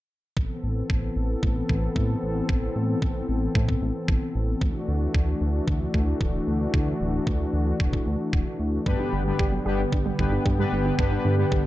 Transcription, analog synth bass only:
0, 0, Header, 1, 2, 480
1, 0, Start_track
1, 0, Tempo, 530973
1, 332, Time_signature, 4, 2, 24, 8
1, 10545, End_track
2, 0, Start_track
2, 0, Title_t, "Analog synth bass"
2, 0, Program_c, 0, 38
2, 332, Note_on_c, 0, 33, 95
2, 420, Note_off_c, 0, 33, 0
2, 572, Note_on_c, 0, 33, 76
2, 749, Note_off_c, 0, 33, 0
2, 812, Note_on_c, 0, 33, 78
2, 989, Note_off_c, 0, 33, 0
2, 1050, Note_on_c, 0, 33, 89
2, 1228, Note_off_c, 0, 33, 0
2, 1292, Note_on_c, 0, 33, 98
2, 1469, Note_off_c, 0, 33, 0
2, 1531, Note_on_c, 0, 33, 96
2, 1709, Note_off_c, 0, 33, 0
2, 1771, Note_on_c, 0, 45, 90
2, 1949, Note_off_c, 0, 45, 0
2, 2012, Note_on_c, 0, 33, 83
2, 2189, Note_off_c, 0, 33, 0
2, 2251, Note_on_c, 0, 33, 80
2, 2429, Note_off_c, 0, 33, 0
2, 2492, Note_on_c, 0, 45, 91
2, 2669, Note_off_c, 0, 45, 0
2, 2731, Note_on_c, 0, 33, 99
2, 2909, Note_off_c, 0, 33, 0
2, 2974, Note_on_c, 0, 33, 86
2, 3150, Note_off_c, 0, 33, 0
2, 3211, Note_on_c, 0, 45, 95
2, 3389, Note_off_c, 0, 45, 0
2, 3453, Note_on_c, 0, 33, 102
2, 3541, Note_off_c, 0, 33, 0
2, 3692, Note_on_c, 0, 33, 75
2, 3780, Note_off_c, 0, 33, 0
2, 3936, Note_on_c, 0, 33, 86
2, 4111, Note_off_c, 0, 33, 0
2, 4171, Note_on_c, 0, 38, 93
2, 4260, Note_off_c, 0, 38, 0
2, 4413, Note_on_c, 0, 38, 80
2, 4590, Note_off_c, 0, 38, 0
2, 4650, Note_on_c, 0, 38, 80
2, 4828, Note_off_c, 0, 38, 0
2, 4892, Note_on_c, 0, 38, 92
2, 5069, Note_off_c, 0, 38, 0
2, 5130, Note_on_c, 0, 38, 103
2, 5308, Note_off_c, 0, 38, 0
2, 5371, Note_on_c, 0, 38, 95
2, 5548, Note_off_c, 0, 38, 0
2, 5611, Note_on_c, 0, 26, 85
2, 5788, Note_off_c, 0, 26, 0
2, 5853, Note_on_c, 0, 38, 85
2, 6030, Note_off_c, 0, 38, 0
2, 6092, Note_on_c, 0, 38, 80
2, 6269, Note_off_c, 0, 38, 0
2, 6330, Note_on_c, 0, 26, 90
2, 6508, Note_off_c, 0, 26, 0
2, 6571, Note_on_c, 0, 38, 94
2, 6749, Note_off_c, 0, 38, 0
2, 6810, Note_on_c, 0, 38, 86
2, 6988, Note_off_c, 0, 38, 0
2, 7052, Note_on_c, 0, 26, 94
2, 7229, Note_off_c, 0, 26, 0
2, 7290, Note_on_c, 0, 38, 99
2, 7380, Note_off_c, 0, 38, 0
2, 7531, Note_on_c, 0, 26, 84
2, 7620, Note_off_c, 0, 26, 0
2, 7770, Note_on_c, 0, 38, 88
2, 7948, Note_off_c, 0, 38, 0
2, 8011, Note_on_c, 0, 31, 94
2, 8100, Note_off_c, 0, 31, 0
2, 8251, Note_on_c, 0, 31, 78
2, 8428, Note_off_c, 0, 31, 0
2, 8492, Note_on_c, 0, 31, 79
2, 8669, Note_off_c, 0, 31, 0
2, 8731, Note_on_c, 0, 31, 87
2, 8908, Note_off_c, 0, 31, 0
2, 8972, Note_on_c, 0, 31, 98
2, 9149, Note_off_c, 0, 31, 0
2, 9212, Note_on_c, 0, 31, 94
2, 9389, Note_off_c, 0, 31, 0
2, 9453, Note_on_c, 0, 43, 90
2, 9629, Note_off_c, 0, 43, 0
2, 9694, Note_on_c, 0, 31, 84
2, 9870, Note_off_c, 0, 31, 0
2, 9933, Note_on_c, 0, 31, 81
2, 10110, Note_off_c, 0, 31, 0
2, 10171, Note_on_c, 0, 43, 91
2, 10349, Note_off_c, 0, 43, 0
2, 10412, Note_on_c, 0, 31, 96
2, 10545, Note_off_c, 0, 31, 0
2, 10545, End_track
0, 0, End_of_file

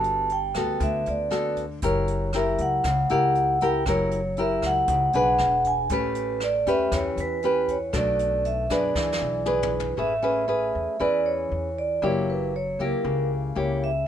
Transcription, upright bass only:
0, 0, Header, 1, 2, 480
1, 0, Start_track
1, 0, Tempo, 509771
1, 1721, Time_signature, 4, 2, 24, 8
1, 13254, End_track
2, 0, Start_track
2, 0, Title_t, "Upright bass"
2, 0, Program_c, 0, 32
2, 0, Note_on_c, 0, 31, 97
2, 482, Note_off_c, 0, 31, 0
2, 520, Note_on_c, 0, 38, 79
2, 744, Note_off_c, 0, 38, 0
2, 754, Note_on_c, 0, 38, 96
2, 981, Note_off_c, 0, 38, 0
2, 1010, Note_on_c, 0, 38, 87
2, 1688, Note_off_c, 0, 38, 0
2, 1719, Note_on_c, 0, 30, 95
2, 2401, Note_off_c, 0, 30, 0
2, 2436, Note_on_c, 0, 37, 75
2, 2661, Note_off_c, 0, 37, 0
2, 2678, Note_on_c, 0, 37, 94
2, 2902, Note_off_c, 0, 37, 0
2, 2925, Note_on_c, 0, 37, 93
2, 3604, Note_off_c, 0, 37, 0
2, 3633, Note_on_c, 0, 30, 94
2, 4318, Note_off_c, 0, 30, 0
2, 4353, Note_on_c, 0, 37, 74
2, 4578, Note_off_c, 0, 37, 0
2, 4595, Note_on_c, 0, 37, 97
2, 4819, Note_off_c, 0, 37, 0
2, 4840, Note_on_c, 0, 35, 90
2, 5062, Note_off_c, 0, 35, 0
2, 5082, Note_on_c, 0, 28, 97
2, 5525, Note_off_c, 0, 28, 0
2, 5555, Note_on_c, 0, 33, 94
2, 6237, Note_off_c, 0, 33, 0
2, 6276, Note_on_c, 0, 40, 81
2, 6499, Note_off_c, 0, 40, 0
2, 6514, Note_on_c, 0, 40, 100
2, 6738, Note_off_c, 0, 40, 0
2, 6752, Note_on_c, 0, 40, 88
2, 7436, Note_off_c, 0, 40, 0
2, 7472, Note_on_c, 0, 35, 100
2, 8156, Note_off_c, 0, 35, 0
2, 8191, Note_on_c, 0, 42, 77
2, 8416, Note_off_c, 0, 42, 0
2, 8433, Note_on_c, 0, 40, 95
2, 8657, Note_off_c, 0, 40, 0
2, 8679, Note_on_c, 0, 35, 87
2, 9359, Note_off_c, 0, 35, 0
2, 9390, Note_on_c, 0, 33, 89
2, 10075, Note_off_c, 0, 33, 0
2, 10122, Note_on_c, 0, 40, 72
2, 10230, Note_off_c, 0, 40, 0
2, 10361, Note_on_c, 0, 40, 92
2, 10805, Note_off_c, 0, 40, 0
2, 10841, Note_on_c, 0, 40, 83
2, 11285, Note_off_c, 0, 40, 0
2, 11318, Note_on_c, 0, 30, 95
2, 12001, Note_off_c, 0, 30, 0
2, 12044, Note_on_c, 0, 37, 76
2, 12152, Note_off_c, 0, 37, 0
2, 12282, Note_on_c, 0, 37, 92
2, 12727, Note_off_c, 0, 37, 0
2, 12771, Note_on_c, 0, 37, 84
2, 13212, Note_off_c, 0, 37, 0
2, 13254, End_track
0, 0, End_of_file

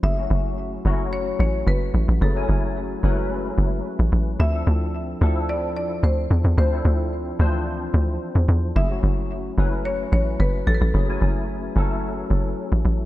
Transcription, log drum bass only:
0, 0, Header, 1, 2, 480
1, 0, Start_track
1, 0, Tempo, 545455
1, 27, Time_signature, 4, 2, 24, 8
1, 11488, End_track
2, 0, Start_track
2, 0, Title_t, "Log drum bass"
2, 0, Program_c, 0, 39
2, 28, Note_on_c, 0, 30, 112
2, 238, Note_off_c, 0, 30, 0
2, 268, Note_on_c, 0, 30, 107
2, 688, Note_off_c, 0, 30, 0
2, 749, Note_on_c, 0, 30, 99
2, 1169, Note_off_c, 0, 30, 0
2, 1227, Note_on_c, 0, 33, 92
2, 1437, Note_off_c, 0, 33, 0
2, 1467, Note_on_c, 0, 30, 104
2, 1677, Note_off_c, 0, 30, 0
2, 1707, Note_on_c, 0, 33, 85
2, 1817, Note_off_c, 0, 33, 0
2, 1834, Note_on_c, 0, 33, 98
2, 1934, Note_off_c, 0, 33, 0
2, 1948, Note_on_c, 0, 30, 115
2, 2158, Note_off_c, 0, 30, 0
2, 2190, Note_on_c, 0, 30, 101
2, 2609, Note_off_c, 0, 30, 0
2, 2669, Note_on_c, 0, 30, 100
2, 3089, Note_off_c, 0, 30, 0
2, 3149, Note_on_c, 0, 30, 95
2, 3358, Note_off_c, 0, 30, 0
2, 3513, Note_on_c, 0, 33, 91
2, 3614, Note_off_c, 0, 33, 0
2, 3628, Note_on_c, 0, 33, 93
2, 3838, Note_off_c, 0, 33, 0
2, 3869, Note_on_c, 0, 38, 113
2, 4078, Note_off_c, 0, 38, 0
2, 4109, Note_on_c, 0, 38, 98
2, 4529, Note_off_c, 0, 38, 0
2, 4588, Note_on_c, 0, 38, 102
2, 5068, Note_on_c, 0, 40, 96
2, 5081, Note_off_c, 0, 38, 0
2, 5278, Note_off_c, 0, 40, 0
2, 5308, Note_on_c, 0, 38, 102
2, 5518, Note_off_c, 0, 38, 0
2, 5549, Note_on_c, 0, 40, 96
2, 5658, Note_off_c, 0, 40, 0
2, 5671, Note_on_c, 0, 40, 94
2, 5773, Note_off_c, 0, 40, 0
2, 5787, Note_on_c, 0, 38, 107
2, 5998, Note_off_c, 0, 38, 0
2, 6027, Note_on_c, 0, 38, 101
2, 6448, Note_off_c, 0, 38, 0
2, 6508, Note_on_c, 0, 38, 101
2, 6928, Note_off_c, 0, 38, 0
2, 6986, Note_on_c, 0, 38, 97
2, 7197, Note_off_c, 0, 38, 0
2, 7351, Note_on_c, 0, 40, 87
2, 7452, Note_off_c, 0, 40, 0
2, 7467, Note_on_c, 0, 40, 99
2, 7677, Note_off_c, 0, 40, 0
2, 7707, Note_on_c, 0, 30, 106
2, 7917, Note_off_c, 0, 30, 0
2, 7947, Note_on_c, 0, 30, 105
2, 8368, Note_off_c, 0, 30, 0
2, 8428, Note_on_c, 0, 30, 101
2, 8848, Note_off_c, 0, 30, 0
2, 8908, Note_on_c, 0, 33, 95
2, 9118, Note_off_c, 0, 33, 0
2, 9149, Note_on_c, 0, 30, 103
2, 9358, Note_off_c, 0, 30, 0
2, 9389, Note_on_c, 0, 33, 86
2, 9497, Note_off_c, 0, 33, 0
2, 9514, Note_on_c, 0, 33, 96
2, 9614, Note_off_c, 0, 33, 0
2, 9629, Note_on_c, 0, 30, 113
2, 9838, Note_off_c, 0, 30, 0
2, 9869, Note_on_c, 0, 30, 106
2, 10289, Note_off_c, 0, 30, 0
2, 10348, Note_on_c, 0, 30, 105
2, 10768, Note_off_c, 0, 30, 0
2, 10828, Note_on_c, 0, 30, 95
2, 11038, Note_off_c, 0, 30, 0
2, 11193, Note_on_c, 0, 33, 92
2, 11294, Note_off_c, 0, 33, 0
2, 11307, Note_on_c, 0, 33, 94
2, 11488, Note_off_c, 0, 33, 0
2, 11488, End_track
0, 0, End_of_file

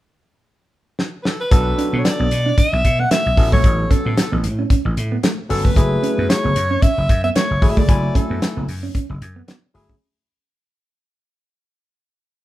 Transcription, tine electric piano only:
0, 0, Header, 1, 2, 480
1, 0, Start_track
1, 0, Tempo, 530973
1, 1370, Time_signature, 4, 2, 24, 8
1, 11248, End_track
2, 0, Start_track
2, 0, Title_t, "Tine electric piano"
2, 0, Program_c, 0, 4
2, 1365, Note_on_c, 0, 54, 97
2, 1368, Note_on_c, 0, 59, 83
2, 1370, Note_on_c, 0, 62, 82
2, 1373, Note_on_c, 0, 69, 98
2, 2067, Note_off_c, 0, 54, 0
2, 2068, Note_off_c, 0, 59, 0
2, 2069, Note_off_c, 0, 62, 0
2, 2070, Note_off_c, 0, 69, 0
2, 3047, Note_on_c, 0, 54, 76
2, 3049, Note_on_c, 0, 59, 68
2, 3051, Note_on_c, 0, 61, 70
2, 3054, Note_on_c, 0, 69, 83
2, 3822, Note_off_c, 0, 54, 0
2, 3823, Note_off_c, 0, 59, 0
2, 3824, Note_off_c, 0, 61, 0
2, 3826, Note_off_c, 0, 69, 0
2, 4967, Note_on_c, 0, 54, 76
2, 4970, Note_on_c, 0, 59, 70
2, 4971, Note_on_c, 0, 61, 70
2, 4974, Note_on_c, 0, 69, 87
2, 5150, Note_off_c, 0, 54, 0
2, 5152, Note_off_c, 0, 59, 0
2, 5153, Note_off_c, 0, 61, 0
2, 5154, Note_off_c, 0, 69, 0
2, 5205, Note_on_c, 0, 54, 74
2, 5207, Note_on_c, 0, 57, 75
2, 5210, Note_on_c, 0, 64, 72
2, 5213, Note_on_c, 0, 68, 87
2, 5906, Note_off_c, 0, 54, 0
2, 5907, Note_off_c, 0, 57, 0
2, 5909, Note_off_c, 0, 64, 0
2, 5910, Note_off_c, 0, 68, 0
2, 6884, Note_on_c, 0, 54, 73
2, 6887, Note_on_c, 0, 57, 68
2, 6888, Note_on_c, 0, 64, 72
2, 6891, Note_on_c, 0, 68, 81
2, 7069, Note_off_c, 0, 54, 0
2, 7070, Note_off_c, 0, 57, 0
2, 7071, Note_off_c, 0, 64, 0
2, 7072, Note_off_c, 0, 68, 0
2, 7126, Note_on_c, 0, 54, 74
2, 7128, Note_on_c, 0, 57, 71
2, 7130, Note_on_c, 0, 64, 74
2, 7133, Note_on_c, 0, 80, 87
2, 7827, Note_off_c, 0, 54, 0
2, 7828, Note_off_c, 0, 57, 0
2, 7829, Note_off_c, 0, 64, 0
2, 7830, Note_off_c, 0, 80, 0
2, 8805, Note_on_c, 0, 54, 83
2, 8808, Note_on_c, 0, 57, 81
2, 8810, Note_on_c, 0, 64, 78
2, 8812, Note_on_c, 0, 68, 93
2, 8989, Note_off_c, 0, 54, 0
2, 8991, Note_off_c, 0, 57, 0
2, 8992, Note_off_c, 0, 64, 0
2, 8993, Note_off_c, 0, 68, 0
2, 11248, End_track
0, 0, End_of_file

